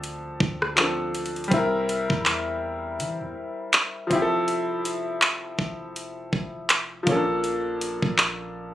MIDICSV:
0, 0, Header, 1, 4, 480
1, 0, Start_track
1, 0, Tempo, 740741
1, 981, Time_signature, 4, 2, 24, 8
1, 5664, End_track
2, 0, Start_track
2, 0, Title_t, "Grand piano"
2, 0, Program_c, 0, 0
2, 0, Control_c, 0, 64, 127
2, 0, Note_on_c, 0, 53, 78
2, 0, Note_on_c, 0, 60, 74
2, 0, Note_on_c, 0, 62, 76
2, 0, Note_on_c, 0, 69, 92
2, 465, Note_off_c, 0, 53, 0
2, 475, Note_off_c, 0, 60, 0
2, 484, Note_off_c, 0, 62, 0
2, 491, Note_on_c, 0, 53, 56
2, 493, Note_off_c, 0, 69, 0
2, 502, Note_on_c, 0, 60, 54
2, 511, Note_on_c, 0, 62, 54
2, 520, Note_on_c, 0, 69, 60
2, 958, Note_on_c, 0, 55, 80
2, 966, Note_off_c, 0, 60, 0
2, 976, Note_off_c, 0, 53, 0
2, 976, Note_on_c, 0, 60, 74
2, 986, Note_off_c, 0, 62, 0
2, 991, Note_off_c, 0, 69, 0
2, 991, Control_c, 0, 64, 0
2, 994, Note_on_c, 0, 64, 72
2, 1012, Note_on_c, 0, 70, 88
2, 1117, Control_c, 0, 64, 127
2, 2624, Note_off_c, 0, 55, 0
2, 2632, Note_off_c, 0, 60, 0
2, 2637, Note_on_c, 0, 53, 73
2, 2642, Note_off_c, 0, 64, 0
2, 2651, Note_off_c, 0, 70, 0
2, 2654, Note_on_c, 0, 60, 66
2, 2668, Control_c, 0, 64, 0
2, 2673, Note_on_c, 0, 64, 68
2, 2691, Note_on_c, 0, 67, 65
2, 2725, Note_off_c, 0, 67, 0
2, 2734, Note_on_c, 0, 69, 78
2, 2767, Control_c, 0, 64, 127
2, 4543, Note_off_c, 0, 53, 0
2, 4552, Note_off_c, 0, 60, 0
2, 4556, Note_on_c, 0, 53, 72
2, 4561, Note_off_c, 0, 64, 0
2, 4575, Note_on_c, 0, 58, 65
2, 4589, Control_c, 0, 64, 0
2, 4591, Note_off_c, 0, 69, 0
2, 4591, Note_on_c, 0, 61, 51
2, 4610, Note_on_c, 0, 69, 80
2, 4633, Note_on_c, 0, 62, 68
2, 4635, Note_off_c, 0, 61, 0
2, 4703, Control_c, 0, 64, 127
2, 5664, Note_off_c, 0, 53, 0
2, 5664, Note_off_c, 0, 58, 0
2, 5664, Note_off_c, 0, 62, 0
2, 5664, Note_off_c, 0, 69, 0
2, 5664, End_track
3, 0, Start_track
3, 0, Title_t, "808-style bass"
3, 0, Program_c, 1, 38
3, 0, Note_on_c, 1, 38, 99
3, 242, Note_off_c, 1, 38, 0
3, 262, Note_on_c, 1, 38, 107
3, 956, Note_off_c, 1, 38, 0
3, 982, Note_on_c, 1, 36, 113
3, 1345, Note_off_c, 1, 36, 0
3, 1361, Note_on_c, 1, 40, 96
3, 1939, Note_on_c, 1, 52, 100
3, 1948, Note_off_c, 1, 40, 0
3, 2079, Note_on_c, 1, 40, 98
3, 2089, Note_off_c, 1, 52, 0
3, 2175, Note_off_c, 1, 40, 0
3, 2661, Note_on_c, 1, 29, 105
3, 3595, Note_off_c, 1, 29, 0
3, 3620, Note_on_c, 1, 29, 101
3, 4081, Note_off_c, 1, 29, 0
3, 4100, Note_on_c, 1, 29, 101
3, 4561, Note_off_c, 1, 29, 0
3, 4580, Note_on_c, 1, 34, 109
3, 5175, Note_off_c, 1, 34, 0
3, 5200, Note_on_c, 1, 34, 93
3, 5664, Note_off_c, 1, 34, 0
3, 5664, End_track
4, 0, Start_track
4, 0, Title_t, "Drums"
4, 23, Note_on_c, 9, 42, 65
4, 88, Note_off_c, 9, 42, 0
4, 262, Note_on_c, 9, 36, 103
4, 327, Note_off_c, 9, 36, 0
4, 402, Note_on_c, 9, 37, 102
4, 467, Note_off_c, 9, 37, 0
4, 501, Note_on_c, 9, 42, 65
4, 502, Note_on_c, 9, 39, 121
4, 565, Note_off_c, 9, 42, 0
4, 566, Note_off_c, 9, 39, 0
4, 742, Note_on_c, 9, 42, 66
4, 807, Note_off_c, 9, 42, 0
4, 814, Note_on_c, 9, 42, 54
4, 879, Note_off_c, 9, 42, 0
4, 883, Note_on_c, 9, 42, 46
4, 934, Note_off_c, 9, 42, 0
4, 934, Note_on_c, 9, 42, 36
4, 982, Note_off_c, 9, 42, 0
4, 982, Note_on_c, 9, 36, 112
4, 982, Note_on_c, 9, 42, 64
4, 1046, Note_off_c, 9, 42, 0
4, 1047, Note_off_c, 9, 36, 0
4, 1225, Note_on_c, 9, 42, 80
4, 1290, Note_off_c, 9, 42, 0
4, 1361, Note_on_c, 9, 36, 100
4, 1426, Note_off_c, 9, 36, 0
4, 1462, Note_on_c, 9, 39, 104
4, 1465, Note_on_c, 9, 42, 75
4, 1526, Note_off_c, 9, 39, 0
4, 1530, Note_off_c, 9, 42, 0
4, 1943, Note_on_c, 9, 42, 62
4, 2008, Note_off_c, 9, 42, 0
4, 2419, Note_on_c, 9, 42, 64
4, 2420, Note_on_c, 9, 39, 122
4, 2484, Note_off_c, 9, 42, 0
4, 2485, Note_off_c, 9, 39, 0
4, 2661, Note_on_c, 9, 36, 112
4, 2662, Note_on_c, 9, 42, 64
4, 2726, Note_off_c, 9, 36, 0
4, 2726, Note_off_c, 9, 42, 0
4, 2902, Note_on_c, 9, 42, 64
4, 2967, Note_off_c, 9, 42, 0
4, 3144, Note_on_c, 9, 42, 75
4, 3209, Note_off_c, 9, 42, 0
4, 3381, Note_on_c, 9, 39, 109
4, 3384, Note_on_c, 9, 42, 74
4, 3445, Note_off_c, 9, 39, 0
4, 3449, Note_off_c, 9, 42, 0
4, 3620, Note_on_c, 9, 36, 98
4, 3685, Note_off_c, 9, 36, 0
4, 3863, Note_on_c, 9, 42, 64
4, 3928, Note_off_c, 9, 42, 0
4, 4100, Note_on_c, 9, 36, 108
4, 4165, Note_off_c, 9, 36, 0
4, 4338, Note_on_c, 9, 42, 65
4, 4339, Note_on_c, 9, 39, 123
4, 4403, Note_off_c, 9, 42, 0
4, 4404, Note_off_c, 9, 39, 0
4, 4580, Note_on_c, 9, 42, 63
4, 4581, Note_on_c, 9, 36, 112
4, 4645, Note_off_c, 9, 42, 0
4, 4646, Note_off_c, 9, 36, 0
4, 4820, Note_on_c, 9, 42, 64
4, 4885, Note_off_c, 9, 42, 0
4, 5063, Note_on_c, 9, 42, 76
4, 5128, Note_off_c, 9, 42, 0
4, 5200, Note_on_c, 9, 36, 100
4, 5265, Note_off_c, 9, 36, 0
4, 5302, Note_on_c, 9, 39, 108
4, 5306, Note_on_c, 9, 42, 74
4, 5367, Note_off_c, 9, 39, 0
4, 5371, Note_off_c, 9, 42, 0
4, 5664, End_track
0, 0, End_of_file